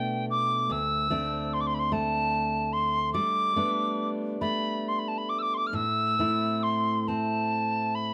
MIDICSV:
0, 0, Header, 1, 3, 480
1, 0, Start_track
1, 0, Tempo, 820793
1, 407, Time_signature, 6, 3, 24, 8
1, 2327, Tempo, 882353
1, 4589, End_track
2, 0, Start_track
2, 0, Title_t, "Tin whistle"
2, 0, Program_c, 0, 75
2, 0, Note_on_c, 0, 79, 75
2, 149, Note_off_c, 0, 79, 0
2, 178, Note_on_c, 0, 86, 70
2, 420, Note_on_c, 0, 88, 84
2, 429, Note_off_c, 0, 86, 0
2, 897, Note_on_c, 0, 84, 72
2, 905, Note_off_c, 0, 88, 0
2, 939, Note_on_c, 0, 86, 54
2, 948, Note_off_c, 0, 84, 0
2, 976, Note_on_c, 0, 84, 69
2, 984, Note_off_c, 0, 86, 0
2, 1019, Note_on_c, 0, 83, 47
2, 1027, Note_off_c, 0, 84, 0
2, 1048, Note_on_c, 0, 84, 70
2, 1057, Note_off_c, 0, 83, 0
2, 1126, Note_on_c, 0, 81, 78
2, 1135, Note_off_c, 0, 84, 0
2, 1596, Note_on_c, 0, 84, 66
2, 1604, Note_off_c, 0, 81, 0
2, 1828, Note_off_c, 0, 84, 0
2, 1831, Note_on_c, 0, 86, 70
2, 2390, Note_off_c, 0, 86, 0
2, 2562, Note_on_c, 0, 83, 72
2, 2819, Note_on_c, 0, 84, 49
2, 2827, Note_off_c, 0, 83, 0
2, 2875, Note_on_c, 0, 83, 44
2, 2884, Note_off_c, 0, 84, 0
2, 2926, Note_on_c, 0, 81, 50
2, 2934, Note_off_c, 0, 83, 0
2, 2979, Note_on_c, 0, 83, 53
2, 2988, Note_off_c, 0, 81, 0
2, 3041, Note_on_c, 0, 86, 59
2, 3049, Note_off_c, 0, 83, 0
2, 3093, Note_on_c, 0, 88, 38
2, 3101, Note_off_c, 0, 86, 0
2, 3112, Note_on_c, 0, 86, 56
2, 3120, Note_off_c, 0, 88, 0
2, 3177, Note_on_c, 0, 84, 42
2, 3185, Note_off_c, 0, 86, 0
2, 3194, Note_on_c, 0, 86, 57
2, 3202, Note_off_c, 0, 84, 0
2, 3245, Note_on_c, 0, 89, 50
2, 3253, Note_off_c, 0, 86, 0
2, 3291, Note_on_c, 0, 88, 80
2, 3299, Note_off_c, 0, 89, 0
2, 3769, Note_on_c, 0, 84, 66
2, 3777, Note_off_c, 0, 88, 0
2, 4013, Note_on_c, 0, 81, 64
2, 4021, Note_off_c, 0, 84, 0
2, 4487, Note_on_c, 0, 83, 60
2, 4495, Note_off_c, 0, 81, 0
2, 4589, Note_off_c, 0, 83, 0
2, 4589, End_track
3, 0, Start_track
3, 0, Title_t, "Steel-string acoustic guitar"
3, 0, Program_c, 1, 25
3, 0, Note_on_c, 1, 47, 59
3, 0, Note_on_c, 1, 57, 53
3, 0, Note_on_c, 1, 59, 45
3, 0, Note_on_c, 1, 62, 51
3, 407, Note_off_c, 1, 47, 0
3, 408, Note_on_c, 1, 38, 59
3, 460, Note_off_c, 1, 59, 0
3, 643, Note_off_c, 1, 57, 0
3, 645, Note_on_c, 1, 57, 49
3, 649, Note_off_c, 1, 62, 0
3, 649, Note_on_c, 1, 60, 45
3, 652, Note_on_c, 1, 62, 53
3, 1119, Note_off_c, 1, 57, 0
3, 1121, Note_on_c, 1, 57, 49
3, 1834, Note_off_c, 1, 38, 0
3, 1838, Note_on_c, 1, 55, 59
3, 1884, Note_off_c, 1, 60, 0
3, 2080, Note_off_c, 1, 57, 0
3, 2082, Note_on_c, 1, 57, 45
3, 2085, Note_on_c, 1, 59, 41
3, 2086, Note_off_c, 1, 62, 0
3, 2088, Note_on_c, 1, 62, 51
3, 2561, Note_off_c, 1, 57, 0
3, 2563, Note_on_c, 1, 57, 43
3, 3279, Note_on_c, 1, 45, 54
3, 3285, Note_off_c, 1, 55, 0
3, 3335, Note_off_c, 1, 59, 0
3, 3336, Note_off_c, 1, 62, 0
3, 3527, Note_off_c, 1, 57, 0
3, 3529, Note_on_c, 1, 60, 44
3, 3533, Note_on_c, 1, 57, 43
3, 3535, Note_on_c, 1, 64, 47
3, 4009, Note_off_c, 1, 60, 0
3, 4015, Note_on_c, 1, 60, 43
3, 4589, Note_off_c, 1, 45, 0
3, 4589, Note_off_c, 1, 57, 0
3, 4589, Note_off_c, 1, 60, 0
3, 4589, Note_off_c, 1, 64, 0
3, 4589, End_track
0, 0, End_of_file